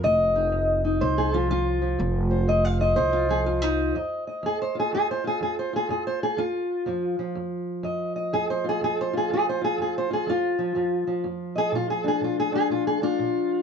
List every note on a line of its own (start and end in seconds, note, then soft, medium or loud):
0.00 0.97 F1 loud
0.00 0.49 F2 medium
0.00 1.33 F3 soft
0.04 1.01 D#5 loud
0.36 0.84 D#4 soft
0.52 0.98 F2 medium
0.85 1.34 D#4 soft
1.01 1.95 C2 medium
1.01 1.46 F2 medium
1.01 1.67 C5 medium
1.18 1.34 G#4 medium
1.34 1.81 F3 soft
1.34 1.49 F4 medium
1.50 1.96 F2 medium
1.50 2.48 F4 loud
1.82 3.27 F3 soft
1.99 2.93 F1 loud
1.99 2.44 F2 medium
2.31 2.79 C5 soft
2.48 2.93 F2 medium
2.48 2.65 D#5 medium
2.65 2.80 F5 medium
2.80 2.95 C5 soft
2.80 3.95 D#5 medium
2.96 3.91 C2 medium
2.96 3.43 F2 medium
2.96 3.94 C5 loud
3.13 3.29 F4 medium
3.29 3.62 F3 soft
3.29 3.46 G#4 medium
3.46 3.91 F2 medium
3.46 3.95 F4 medium
3.62 3.95 D#4 medium
3.95 4.40 F2 medium
3.95 4.27 D#5 medium
4.27 5.92 D#5 soft
4.43 4.89 F2 medium
4.43 4.61 G#4 medium
4.62 4.77 C5 medium
4.75 5.24 F4 soft
4.80 4.93 G#4 medium
4.93 5.38 F2 medium
4.93 5.10 G#4 loud
5.11 5.26 C5 medium
5.24 5.73 F4 soft
5.24 5.41 G#4 medium
5.41 5.86 F2 medium
5.41 5.58 G#4 medium
5.59 5.75 C5 medium
5.73 6.38 F4 soft
5.73 5.89 G#4 medium
5.89 6.35 F2 medium
5.89 6.07 G#4 medium
6.07 6.23 C5 medium
6.23 6.39 G#4 medium
6.37 6.83 F2 medium
6.37 7.36 F4 medium
6.86 7.32 F2 medium
6.86 7.19 F3 soft
7.19 10.58 F3 soft
7.35 7.81 F2 medium
7.83 8.29 F2 medium
7.83 8.15 D#5 medium
8.16 9.77 D#5 soft
8.33 8.78 F2 medium
8.33 8.50 G#4 loud
8.50 8.66 C5 medium
8.64 9.13 F4 soft
8.69 8.83 G#4 medium
8.81 9.27 F2 medium
8.81 8.99 G#4 loud
9.01 9.16 C5 medium
9.13 9.61 F4 soft
9.17 9.32 G#4 medium
9.30 9.75 F2 medium
9.30 9.48 G#4 medium
9.49 9.64 C5 medium
9.61 10.10 F4 soft
9.61 9.80 G#4 loud
9.78 10.24 F2 medium
9.78 9.97 G#4 medium
9.98 10.13 C5 medium
10.11 10.29 F4 soft
10.11 10.29 G#4 medium
10.27 10.72 F2 medium
10.27 11.26 F4 medium
10.59 10.75 F3 soft
10.75 11.20 F2 medium
10.75 11.07 F3 soft
11.07 13.62 F3 soft
11.24 11.69 F2 medium
11.56 11.74 G#4 loud
11.56 11.71 D#5 soft
11.72 12.17 A#2 medium
11.72 11.90 F4 loud
11.90 12.06 G#4 medium
12.04 12.52 D4 soft
12.04 12.23 G#4 medium
12.21 12.66 A#2 medium
12.21 12.39 F4 medium
12.40 12.54 G#4 loud
12.52 13.01 D4 soft
12.52 12.71 G#4 loud
12.70 13.15 A#2 medium
12.70 12.87 F4 medium
12.87 13.03 G#4 loud
13.02 13.62 D4 soft
13.02 13.62 F4 loud
13.19 13.62 A#2 medium